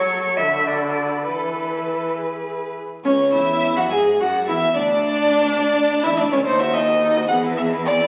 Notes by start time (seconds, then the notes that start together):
Already playing: F#3 A4 C#5 C#6
0.37 D3 F#4 E5 B5
0.67 D5
1.26 E3 A4 B4
2.16 G#4
3.04 C#2 C#4 C#5
3.32 E2 E4 E5
3.76 F#2 F#4 F#5
3.90 G#2 G#4 G#5
4.20 F#2 F#4 F#5
4.48 E2 E4 E5
4.76 D2 D4 D5
6.03 E2 E4 E5
6.17 D2 D4 D5
6.31 C#2 C#4 C#5
6.44 D#2 D#4 A4 C5
6.60 F#4 C5 E5
6.73 D#4 A4 D#5
6.87 F#4 C5
7.01 D#4 A4
7.16 F#4 C5
7.28 E2 B3 G#4 F#5
7.43 E4 B4
7.57 B3 G#4 E5
7.72 E4 B4
7.85 B3 G#4 D5
7.99 E4 B4